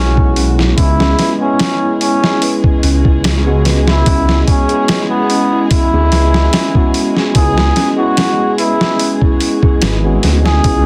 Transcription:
0.00 0.74 B1 medium
0.00 0.77 G#3 medium
0.00 0.78 B3 medium
0.00 0.36 C#4 loud
0.00 0.63 C#4 loud
0.00 0.78 C#4 medium
0.00 0.59 E4 loud
0.00 0.80 E4 loud
0.00 0.79 F#4 medium
0.00 0.99 G#4 loud
0.00 1.19 B4 medium
0.17 kick medium
0.36 0.57 C#4 loud
0.36 open hi-hat medium
0.59 0.69 E4 medium
0.59 snare soft
0.77 1.14 C#2 loud
0.77 1.35 G#3 medium
0.77 10.86 G#3 medium
0.77 1.35 B3 medium
0.77 1.36 C#4 medium
0.77 1.35 E4 loud
0.77 1.36 E4 medium
0.77 10.86 G#4 medium
0.77 kick loud
0.77 open hi-hat medium
0.99 1.18 G#4 loud
0.99 snare medium
1.19 1.39 B4 medium
1.19 snare soft
1.19 open hi-hat medium
1.39 3.41 G#3 medium
1.39 3.42 B3 medium
1.39 3.43 C#4 medium
1.39 1.96 C#4 medium
1.44 3.44 E4 medium
1.59 1.81 C#4 medium
1.59 snare loud
1.59 open hi-hat medium
1.82 1.93 E4 loud
2.01 2.58 C#4 loud
2.01 open hi-hat medium
2.23 2.41 G#4 loud
2.23 snare medium
2.42 2.63 B4 medium
2.42 open hi-hat medium
2.64 kick medium
2.83 4.03 C#2 medium
2.83 3.04 C#4 loud
2.83 open hi-hat medium
3.05 3.16 E4 loud
3.05 kick medium
3.24 snare loud
3.24 open hi-hat medium
3.46 4.02 G#3 medium
3.46 4.02 B3 medium
3.46 4.03 C#4 medium
3.46 4.03 F#4 loud
3.46 3.64 G#4 loud
3.65 3.86 B4 medium
3.65 snare soft
3.65 open hi-hat medium
3.88 4.42 E4 loud
3.88 snare medium
4.06 4.43 C#2 loud
4.06 4.64 G#3 medium
4.06 4.65 B3 medium
4.06 4.27 C#4 loud
4.06 4.65 C#4 medium
4.06 4.66 E4 medium
4.06 kick loud
4.06 open hi-hat medium
4.29 4.40 E4 loud
4.29 snare medium
4.48 5.04 C#4 loud
4.48 kick loud
4.48 open hi-hat medium
4.68 6.70 G#3 medium
4.68 6.71 B3 medium
4.68 6.72 C#4 medium
4.68 4.88 G#4 loud
4.68 closed hi-hat soft
4.73 6.72 E4 medium
4.88 5.10 B4 medium
4.88 snare loud
4.88 open hi-hat medium
5.11 5.66 B3 loud
5.30 5.51 C#4 loud
5.30 open hi-hat medium
5.52 5.63 E4 loud
5.71 7.20 E4 loud
5.71 kick loud
5.71 open hi-hat medium
5.93 6.10 D2 loud
5.93 6.11 G#4 medium
6.12 6.49 C#2 loud
6.12 6.33 B4 medium
6.12 snare soft
6.12 open hi-hat medium
6.34 snare medium
6.53 6.74 C#4 loud
6.53 snare loud
6.53 open hi-hat loud
6.74 7.30 G#3 medium
6.74 7.31 B3 medium
6.74 7.31 C#4 medium
6.74 6.86 E4 loud
6.74 7.32 F#4 loud
6.74 kick loud
6.94 open hi-hat medium
7.17 7.35 G#4 loud
7.17 snare soft
7.35 7.72 C#2 loud
7.35 7.93 G#3 medium
7.35 7.93 B3 medium
7.35 7.94 C#4 medium
7.35 7.94 E4 medium
7.35 7.92 G#4 loud
7.35 7.56 B4 medium
7.35 kick loud
7.35 open hi-hat medium
7.58 snare medium
7.76 7.98 C#4 loud
7.76 snare soft
7.76 open hi-hat medium
7.96 9.98 G#3 medium
7.96 9.99 B3 medium
7.96 10.00 C#4 medium
7.96 8.10 E4 loud
7.96 8.53 F#4 loud
8.02 10.01 E4 medium
8.17 snare loud
8.17 open hi-hat medium
8.40 8.58 G#4 loud
8.58 9.15 E4 loud
8.58 8.80 B4 medium
8.58 open hi-hat medium
8.81 snare medium
8.99 9.21 C#4 loud
8.99 open hi-hat medium
9.22 9.33 E4 loud
9.22 kick medium
9.40 open hi-hat medium
9.63 9.81 G#4 loud
9.63 kick medium
9.82 10.19 G#1 loud
9.82 10.03 B4 medium
9.82 snare loud
9.82 open hi-hat loud
10.03 10.59 G#3 medium
10.03 10.60 B3 medium
10.03 10.60 C#4 medium
10.03 10.61 F#4 loud
10.23 10.60 D2 loud
10.23 10.44 C#4 loud
10.23 snare soft
10.23 open hi-hat medium
10.45 10.56 E4 loud
10.45 10.86 G#4 loud
10.45 snare medium
10.64 10.86 C#2 loud
10.64 10.86 G#3 medium
10.64 10.86 B3 medium
10.64 10.86 C#4 medium
10.64 10.86 E4 medium
10.64 kick loud
10.64 open hi-hat medium

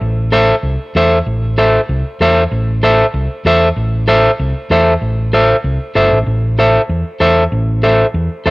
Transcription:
0.01 0.51 A1 medium
0.32 0.54 A4 medium
0.32 0.55 C5 medium
0.32 0.55 E5 medium
0.63 0.76 C2 loud
0.95 1.20 E2 medium
0.95 1.18 A4 medium
0.95 1.18 C5 medium
0.95 1.18 E5 medium
1.26 1.77 A1 loud
1.58 1.80 A4 medium
1.58 1.80 C5 medium
1.58 1.80 E5 medium
1.89 2.02 C2 loud
2.20 2.45 E2 loud
2.20 2.43 A4 medium
2.20 2.43 C5 medium
2.20 2.43 E5 medium
2.51 3.02 A1 loud
2.83 3.05 A4 medium
2.83 3.05 C5 medium
2.83 3.06 E5 loud
3.14 3.27 C2 loud
3.45 3.70 E2 loud
3.45 3.68 A4 medium
3.45 3.68 C5 medium
3.45 3.68 E5 loud
3.76 4.27 A1 loud
4.07 4.30 A4 medium
4.07 4.30 C5 medium
4.07 4.30 E5 loud
4.39 4.52 C2 loud
4.70 4.95 E2 loud
4.70 4.93 A4 medium
4.70 4.93 C5 medium
4.70 4.93 E5 medium
5.01 5.52 A1 medium
5.33 5.55 A4 medium
5.33 5.55 C5 medium
5.33 5.56 E5 medium
5.64 5.77 C2 loud
5.96 6.10 G1 medium
5.96 6.18 A4 medium
5.96 6.18 C5 medium
5.96 6.18 E5 medium
6.11 6.26 A1 medium
6.26 6.77 A1 loud
6.59 6.81 A4 medium
6.59 6.81 C5 medium
6.59 6.81 E5 medium
6.89 7.02 E2 medium
7.20 7.46 E2 loud
7.20 7.43 A4 medium
7.20 7.43 C5 medium
7.20 7.43 E5 medium
7.52 8.03 A1 loud
7.83 8.06 A4 medium
7.83 8.06 C5 medium
7.83 8.06 E5 medium
8.14 8.27 E2 loud
8.46 8.50 E2 loud
8.46 8.50 A4 medium
8.46 8.50 C5 medium
8.46 8.50 E5 medium

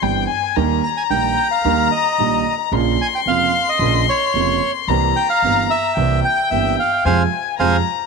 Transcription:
0.02 0.25 G1 soft
0.02 0.25 G2 soft
0.02 0.25 E3 soft
0.02 0.24 G3 soft
0.02 0.25 C4 soft
0.02 0.25 G4 soft
0.02 0.28 G5 medium
0.28 0.57 G#5 medium
0.55 0.79 D#2 medium
0.55 0.79 D#3 medium
0.55 0.79 G3 medium
0.55 0.79 A#3 medium
0.55 0.79 G4 medium
0.55 2.74 A#5 medium
0.84 0.90 A#5 medium
0.97 1.03 G#5 medium
1.10 1.33 A#1 medium
1.10 1.33 A#1 soft
1.10 1.33 A#2 soft
1.10 1.33 D#3 soft
1.10 1.33 G3 soft
1.10 1.33 A#3 soft
1.10 1.33 G4 soft
1.10 1.48 G5 medium
1.51 1.88 F5 medium
1.65 1.87 D#2 medium
1.65 1.88 D#3 medium
1.65 1.87 G3 medium
1.65 1.87 A#3 medium
1.65 1.88 G4 medium
1.91 2.55 D#5 medium
2.18 2.41 A#1 soft
2.18 2.42 A#1 soft
2.18 2.42 A#2 soft
2.18 2.41 D#3 soft
2.18 2.42 G3 soft
2.18 2.42 A#3 soft
2.18 2.42 G4 soft
2.72 2.95 A#1 medium
2.72 2.95 A#2 medium
2.72 2.95 C#3 medium
2.72 2.95 F3 medium
2.72 2.96 A#3 medium
2.72 2.95 F4 medium
2.72 4.90 C6 medium
3.01 3.07 G#5 medium
3.15 3.21 G5 medium
3.26 3.49 F1 medium
3.26 3.49 F1 soft
3.26 3.50 F2 soft
3.26 3.49 C#3 soft
3.26 3.50 F3 soft
3.26 3.49 A#3 soft
3.26 3.50 F4 soft
3.26 3.69 F5 medium
3.69 4.06 D#5 medium
3.79 4.02 A#1 medium
3.79 4.04 A#1 medium
3.79 4.04 A#2 medium
3.79 4.03 C#3 medium
3.79 4.03 F3 medium
3.79 4.04 A#3 medium
3.79 4.04 F4 medium
4.09 4.72 C#5 medium
4.34 4.57 F1 medium
4.34 4.58 F1 soft
4.34 4.58 F2 soft
4.34 4.58 C#3 soft
4.34 4.58 F3 soft
4.34 4.58 A#3 soft
4.34 4.58 F4 soft
4.88 5.11 C2 medium
4.88 5.12 C2 medium
4.88 5.12 C3 medium
4.88 5.12 E3 medium
4.88 5.12 A#3 medium
4.88 5.12 C4 medium
4.88 5.12 G4 medium
4.88 5.97 A#5 medium
5.16 5.28 G5 medium
5.30 5.67 F5 medium
5.42 5.65 G1 medium
5.42 5.66 G1 soft
5.42 5.66 G2 soft
5.42 5.66 E3 soft
5.42 5.66 A#3 soft
5.42 5.66 C4 soft
5.42 5.66 G4 soft
5.70 6.20 E5 medium
5.97 6.19 C2 medium
5.97 6.20 C2 medium
5.97 6.20 C3 medium
5.97 6.20 E3 medium
5.97 6.20 A#3 medium
5.97 6.20 C4 medium
5.97 6.20 G4 medium
5.97 7.06 G5 medium
6.25 6.49 G5 medium
6.51 6.74 G1 soft
6.51 6.74 G2 soft
6.51 6.74 E3 soft
6.51 6.74 A#3 soft
6.51 6.74 C4 soft
6.51 6.74 G4 soft
6.51 6.76 E5 medium
6.79 7.04 F5 medium
7.05 7.25 F2 medium
7.05 7.23 C3 medium
7.05 7.23 F3 medium
7.05 7.23 G#3 medium
7.05 7.23 C5 medium
7.05 7.23 F5 medium
7.05 7.58 G#5 medium
7.05 7.23 G#5 medium
7.59 7.79 F2 medium
7.59 7.77 C3 medium
7.59 7.77 F3 medium
7.59 7.77 G#3 medium
7.59 7.77 C5 medium
7.59 7.77 F5 medium
7.59 7.77 G#5 medium
7.59 8.06 A#5 medium

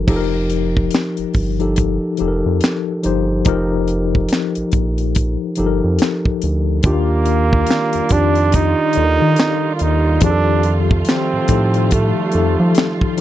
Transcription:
0.07 0.89 F1 loud
0.07 1.25 F3 loud
0.07 1.25 D#4 medium
0.07 1.26 G4 medium
0.07 0.17 A4 medium
0.07 kick loud
0.07 crash medium
0.16 1.29 A#4 loud
0.50 closed hi-hat medium
0.77 kick medium
0.91 snare loud
0.91 closed hi-hat medium
0.95 clap medium
1.17 1.25 G1 soft
1.17 closed hi-hat soft
1.33 1.98 G1 medium
1.33 kick medium
1.33 open hi-hat soft
1.59 2.07 F3 medium
1.59 2.08 D#4 medium
1.59 2.08 G4 medium
1.59 2.09 A4 medium
1.59 closed hi-hat soft
1.76 kick medium
1.76 closed hi-hat medium
2.17 2.43 F1 medium
2.17 2.88 F3 medium
2.17 2.88 D#4 medium
2.17 2.89 G4 medium
2.17 2.28 A4 medium
2.17 closed hi-hat medium
2.28 2.93 A#4 medium
2.46 2.61 F2 loud
2.61 snare loud
2.61 closed hi-hat medium
2.65 clap medium
3.03 3.43 G1 medium
3.03 3.38 F3 medium
3.03 3.38 D#4 medium
3.03 3.39 G4 medium
3.03 3.39 C5 medium
3.03 closed hi-hat medium
3.45 4.27 F1 loud
3.45 4.78 F3 loud
3.45 4.79 D#4 loud
3.45 4.79 G4 loud
3.45 4.80 A#4 loud
3.45 kick loud
3.45 closed hi-hat medium
3.88 closed hi-hat medium
4.15 kick medium
4.29 snare loud
4.29 closed hi-hat medium
4.33 clap medium
4.55 4.64 A#1 medium
4.55 closed hi-hat medium
4.72 5.37 A#1 medium
4.72 kick medium
4.72 closed hi-hat medium
4.98 closed hi-hat soft
5.15 kick medium
5.15 closed hi-hat medium
5.55 5.81 G1 medium
5.55 6.58 F3 medium
5.55 6.59 D#4 medium
5.55 6.59 G4 medium
5.55 closed hi-hat medium
5.60 5.66 A4 medium
5.66 6.63 A#4 medium
5.84 5.99 F2 medium
5.99 snare loud
5.99 closed hi-hat medium
6.03 clap medium
6.25 kick medium
6.42 6.81 D2 medium
6.42 closed hi-hat medium
6.83 7.65 D#2 loud
6.83 7.85 D#3 medium
6.83 10.18 D#3 medium
6.83 13.21 G3 medium
6.83 8.14 A#3 loud
6.83 7.85 D4 medium
6.83 13.21 F4 medium
6.83 7.86 F4 medium
6.83 7.86 G4 loud
6.83 10.18 D5 medium
6.83 kick loud
6.83 closed hi-hat medium
7.25 closed hi-hat medium
7.53 kick loud
7.67 snare loud
7.67 closed hi-hat medium
7.71 clap medium
7.93 8.01 F2 medium
7.93 closed hi-hat medium
8.09 8.74 F2 medium
8.09 8.80 D#3 medium
8.09 8.80 D4 medium
8.09 8.57 D4 loud
8.09 8.81 F4 medium
8.09 8.81 G4 medium
8.09 kick medium
8.09 closed hi-hat medium
8.35 closed hi-hat soft
8.52 9.75 D#4 loud
8.52 kick medium
8.52 closed hi-hat medium
8.93 9.96 D#3 medium
8.93 9.97 F4 medium
8.93 9.97 D5 medium
8.93 closed hi-hat medium
8.97 9.19 D#2 medium
8.97 9.04 A4 medium
9.04 10.01 A#4 medium
9.22 9.37 D#3 medium
9.36 snare loud
9.36 closed hi-hat medium
9.40 clap medium
9.75 9.83 F4 medium
9.75 closed hi-hat medium
9.81 10.19 D#2 medium
9.81 10.23 D#4 loud
10.21 11.03 F2 loud
10.21 11.23 D#3 medium
10.21 11.23 F3 medium
10.21 13.21 F3 medium
10.21 13.21 A3 medium
10.21 10.79 D4 loud
10.21 11.24 G4 medium
10.21 10.31 G#4 medium
10.21 kick loud
10.21 closed hi-hat medium
10.31 11.28 A4 loud
10.63 closed hi-hat medium
10.91 kick loud
11.05 11.94 C4 loud
11.05 snare loud
11.05 closed hi-hat medium
11.10 clap loud
11.33 11.40 A2 soft
11.48 12.13 A2 medium
11.48 12.18 F3 medium
11.48 12.18 D#4 medium
11.48 12.19 G4 medium
11.48 12.19 A4 medium
11.48 kick medium
11.48 closed hi-hat medium
11.74 closed hi-hat soft
11.91 13.18 A3 medium
11.91 kick medium
11.91 closed hi-hat medium
12.32 12.57 F2 medium
12.32 13.02 F3 medium
12.32 13.03 D#4 medium
12.32 13.03 G4 medium
12.32 13.04 A4 medium
12.32 closed hi-hat medium
12.60 12.75 F3 medium
12.75 snare loud
12.75 closed hi-hat medium
12.79 clap medium
13.01 kick medium
13.17 13.21 F3 medium
13.17 closed hi-hat medium

